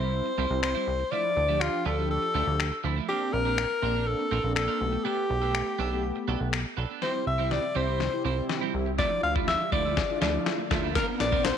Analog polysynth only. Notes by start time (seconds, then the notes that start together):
Already playing: G3 C4 E4
0.50 G3 C4 E4
1.12 F3 D4 E4
1.48 F3 D4 G4
1.98 F3 D4 G4
3.09 A#3 C4 D4
3.82 A#3 C4 D4
4.44 A#3 C4 D4
4.80 A3 B3 G4
5.42 A3 B3 G4
5.91 A3 B3 G4
7.02 C4 E4 G4
7.39 C4 E4 G4
7.76 C4 E4 G4
8.12 C4 E4 G4
8.37 C4 E4 G4
8.74 C4 E4 G4
8.99 D4 E4 F4
9.35 D4 E4 F4
9.72 D4 E4 F4
10.09 D4 E4 F4
10.34 D4 E4 F4
10.71 D4 E4 F4
10.95 C4 D4 A#4
11.32 C4 D4 C5